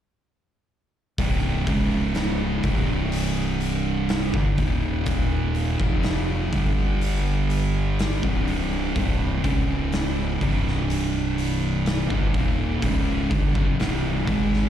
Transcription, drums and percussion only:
1.18 kick loud
1.18 open hi-hat medium
1.67 kick loud
1.67 open hi-hat medium
2.15 snare loud
2.15 open hi-hat medium
2.63 kick medium
2.63 open hi-hat medium
3.12 open hi-hat medium
3.60 open hi-hat soft
4.09 snare loud
4.09 open hi-hat medium
4.34 kick loud
4.58 kick loud
4.58 open hi-hat medium
5.06 kick loud
5.06 open hi-hat medium
5.55 open hi-hat soft
5.80 kick loud
6.03 snare loud
6.03 open hi-hat medium
6.53 kick loud
6.53 open hi-hat soft
7.01 open hi-hat medium
7.50 open hi-hat soft
7.99 snare loud
7.99 open hi-hat medium
8.23 kick loud
8.48 open hi-hat soft
8.96 kick loud
8.96 open hi-hat medium
9.44 kick loud
9.44 open hi-hat medium
9.92 snare loud
9.92 open hi-hat medium
10.41 kick medium
10.41 open hi-hat soft
10.68 snare soft
10.90 open hi-hat medium
11.38 open hi-hat medium
11.86 snare loud
11.86 open hi-hat medium
12.10 kick loud
12.34 kick loud
12.34 open hi-hat soft
12.82 kick loud
12.82 open hi-hat medium
13.31 kick loud
13.31 open hi-hat medium
13.55 kick loud
13.80 snare loud
13.80 open hi-hat medium
14.27 kick loud
14.27 open hi-hat soft
14.53 snare soft

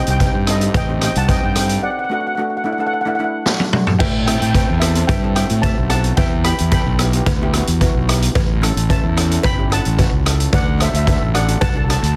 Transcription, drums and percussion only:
0.07 closed hi-hat medium
0.20 kick medium
0.20 closed hi-hat medium
0.20 cowbell medium
0.47 cross-stick medium
0.47 closed hi-hat medium
0.61 closed hi-hat medium
0.74 kick loud
0.74 closed hi-hat medium
0.74 cowbell loud
1.01 cross-stick medium
1.01 closed hi-hat medium
1.15 closed hi-hat medium
1.29 kick medium
1.29 closed hi-hat medium
1.29 cowbell medium
1.55 cross-stick medium
1.55 closed hi-hat medium
1.69 closed hi-hat medium
3.46 snare medium
3.60 high tom medium
3.73 mid tom medium
3.87 floor tom medium
4.00 kick loud
4.00 crash loud
4.00 cowbell loud
4.27 cross-stick medium
4.27 closed hi-hat medium
4.42 closed hi-hat medium
4.54 kick medium
4.54 closed hi-hat medium
4.54 cowbell medium
4.81 cross-stick medium
4.81 closed hi-hat medium
4.95 closed hi-hat medium
5.09 kick loud
5.09 closed hi-hat medium
5.09 cowbell loud
5.36 cross-stick medium
5.36 closed hi-hat medium
5.50 closed hi-hat medium
5.63 kick medium
5.63 closed hi-hat medium
5.63 cowbell medium
5.90 cross-stick medium
5.90 closed hi-hat medium
6.04 closed hi-hat medium
6.17 kick loud
6.17 closed hi-hat medium
6.17 cowbell medium
6.44 cross-stick medium
6.44 closed hi-hat medium
6.58 closed hi-hat medium
6.71 kick medium
6.71 closed hi-hat medium
6.71 cowbell medium
6.99 cross-stick medium
6.99 closed hi-hat medium
7.13 closed hi-hat medium
7.26 kick loud
7.26 closed hi-hat medium
7.26 cowbell loud
7.53 cross-stick medium
7.53 closed hi-hat medium
7.67 closed hi-hat medium
7.81 kick medium
7.81 closed hi-hat medium
7.81 cowbell medium
8.09 cross-stick loud
8.09 closed hi-hat medium
8.22 closed hi-hat medium
8.35 kick loud
8.35 closed hi-hat medium
8.35 cowbell loud
8.63 cross-stick medium
8.63 closed hi-hat medium
8.77 closed hi-hat medium
8.90 kick medium
8.90 closed hi-hat medium
8.90 cowbell medium
9.17 cross-stick medium
9.17 closed hi-hat loud
9.31 closed hi-hat medium
9.43 kick loud
9.43 closed hi-hat medium
9.43 cowbell loud
9.72 cross-stick medium
9.72 closed hi-hat medium
9.85 closed hi-hat medium
9.99 kick medium
9.99 closed hi-hat medium
9.99 cowbell medium
10.26 cross-stick medium
10.26 closed hi-hat medium
10.40 closed hi-hat medium
10.53 kick loud
10.53 closed hi-hat medium
10.53 cowbell medium
10.80 cross-stick medium
10.80 closed hi-hat medium
10.94 closed hi-hat medium
11.07 kick loud
11.07 closed hi-hat medium
11.07 cowbell medium
11.35 cross-stick medium
11.35 closed hi-hat medium
11.48 closed hi-hat medium
11.61 kick loud
11.61 closed hi-hat medium
11.61 cowbell loud
11.90 cross-stick medium
11.90 closed hi-hat loud
12.04 closed hi-hat medium

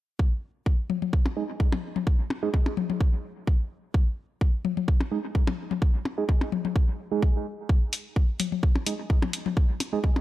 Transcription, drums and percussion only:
0.19 kick loud
0.66 kick medium
0.90 high tom medium
1.02 high tom soft
1.13 kick loud
1.26 percussion blips medium
1.60 kick loud
1.73 high tom medium
1.73 percussion blips medium
1.96 high tom medium
2.07 kick loud
2.30 percussion blips medium
2.54 kick loud
2.66 percussion blips medium
2.77 high tom medium
2.90 high tom medium
3.01 kick loud
3.47 kick loud
3.94 kick loud
4.41 kick loud
4.65 high tom medium
4.77 high tom medium
4.88 kick loud
5.01 percussion blips medium
5.35 kick loud
5.47 high tom medium
5.47 percussion blips medium
5.71 high tom medium
5.82 kick loud
6.05 percussion blips medium
6.29 kick loud
6.41 percussion blips medium
6.52 high tom medium
6.65 high tom medium
6.76 kick loud
7.22 kick loud
7.69 kick loud
7.93 open hi-hat medium
8.16 kick loud
8.40 open hi-hat medium
8.40 high tom medium
8.52 high tom medium
8.63 kick loud
8.76 percussion blips medium
8.87 open hi-hat medium
9.10 kick loud
9.22 high tom medium
9.22 percussion blips medium
9.33 open hi-hat medium
9.46 high tom medium
9.57 kick loud
9.80 open hi-hat medium
9.80 percussion blips medium
10.04 kick loud
10.16 percussion blips medium

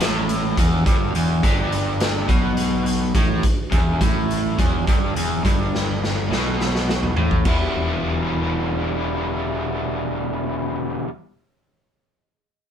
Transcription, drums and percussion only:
0.01 snare loud
0.01 closed hi-hat medium
0.29 closed hi-hat medium
0.57 kick medium
0.57 closed hi-hat medium
0.86 kick loud
0.86 closed hi-hat medium
1.15 closed hi-hat medium
1.43 kick medium
1.43 closed hi-hat medium
1.72 closed hi-hat medium
2.00 snare loud
2.00 closed hi-hat medium
2.29 kick medium
2.29 closed hi-hat medium
2.57 closed hi-hat medium
2.86 closed hi-hat soft
3.15 kick loud
3.15 closed hi-hat medium
3.43 kick medium
3.43 closed hi-hat medium
3.72 kick medium
3.72 closed hi-hat medium
4.01 kick medium
4.01 closed hi-hat medium
4.31 closed hi-hat medium
4.59 kick medium
4.59 closed hi-hat medium
4.87 kick medium
4.87 closed hi-hat medium
5.16 closed hi-hat medium
5.45 kick medium
5.45 closed hi-hat medium
5.75 snare medium
6.04 snare medium
6.32 snare medium
6.61 snare medium
6.75 snare medium
6.89 snare medium
7.03 floor tom medium
7.17 floor tom medium
7.31 kick medium
7.45 kick medium
7.45 crash medium

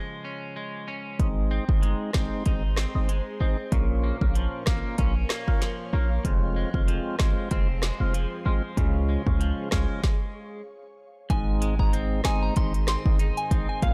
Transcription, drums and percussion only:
1.20 kick loud
1.20 closed hi-hat medium
1.69 kick medium
1.83 closed hi-hat medium
2.13 kick medium
2.13 cross-stick medium
2.13 snare loud
2.46 kick loud
2.46 closed hi-hat medium
2.77 cross-stick loud
2.77 snare loud
3.09 closed hi-hat medium
3.72 kick loud
3.72 closed hi-hat medium
4.21 kick medium
4.35 closed hi-hat medium
4.66 kick medium
4.66 cross-stick medium
4.66 snare loud
4.98 kick loud
4.98 closed hi-hat medium
5.29 cross-stick loud
5.29 snare loud
5.48 kick loud
5.62 snare medium
5.62 closed hi-hat medium
6.25 kick loud
6.25 closed hi-hat medium
6.74 kick medium
6.88 closed hi-hat medium
7.19 kick medium
7.19 cross-stick medium
7.19 snare loud
7.51 kick loud
7.51 closed hi-hat medium
7.82 cross-stick medium
7.82 snare loud
8.14 closed hi-hat medium
8.77 kick loud
8.77 closed hi-hat medium
9.27 kick medium
9.41 closed hi-hat medium
9.71 kick medium
9.71 cross-stick medium
9.71 snare loud
10.04 kick loud
10.04 snare medium
11.30 kick loud
11.30 closed hi-hat medium
11.62 closed hi-hat medium
11.79 kick medium
11.93 closed hi-hat medium
12.24 cross-stick medium
12.24 snare loud
12.24 closed hi-hat medium
12.56 kick loud
12.56 closed hi-hat medium
12.74 closed hi-hat medium
12.87 cross-stick medium
12.87 snare loud
12.87 closed hi-hat medium
13.06 kick loud
13.19 closed hi-hat medium
13.37 closed hi-hat medium
13.51 kick medium
13.51 closed hi-hat medium
13.82 kick loud
13.82 closed hi-hat medium

